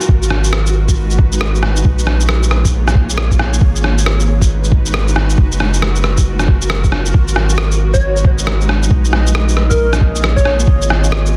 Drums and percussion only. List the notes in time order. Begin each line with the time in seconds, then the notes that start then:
0.01 shaker
0.09 kick
0.23 shaker
0.30 cross-stick
0.44 shaker
0.53 cross-stick
0.66 shaker
0.88 kick, shaker
1.10 shaker
1.19 kick
1.33 shaker
1.41 cross-stick
1.55 shaker
1.63 cross-stick
1.76 shaker
1.85 kick
1.99 shaker
2.07 cross-stick
2.21 shaker
2.29 cross-stick
2.43 shaker
2.51 cross-stick
2.65 kick, shaker
2.88 cross-stick, shaker
2.95 kick
3.10 shaker
3.18 cross-stick
3.31 kick, shaker
3.39 cross-stick
3.54 shaker
3.61 kick
3.76 shaker
3.84 cross-stick
3.98 shaker
4.06 cross-stick
4.20 shaker
4.41 kick, shaker
4.64 shaker
4.72 kick
4.86 shaker
4.94 cross-stick
5.08 shaker
5.16 cross-stick
5.30 shaker
5.38 kick
5.52 shaker
5.60 cross-stick
5.74 shaker
5.82 cross-stick
5.96 shaker
6.04 cross-stick
6.17 kick, shaker
6.39 cross-stick, shaker
6.48 kick
6.62 shaker
6.70 cross-stick
6.84 kick, shaker
6.92 cross-stick
7.06 shaker
7.14 kick
7.28 shaker
7.36 cross-stick
7.50 shaker
7.58 cross-stick
7.72 shaker
7.94 kick, shaker
8.16 shaker
8.25 kick
8.39 shaker
8.47 cross-stick
8.61 shaker
8.69 cross-stick
8.83 shaker
8.91 kick
9.05 shaker
9.13 cross-stick
9.27 shaker
9.35 cross-stick
9.49 shaker
9.57 cross-stick
9.71 kick, shaker
9.93 cross-stick, shaker
10.01 kick
10.16 shaker
10.24 cross-stick
10.37 kick, shaker
10.45 cross-stick
10.60 shaker
10.67 kick
10.82 shaker
10.90 cross-stick
11.04 shaker
11.12 cross-stick
11.26 shaker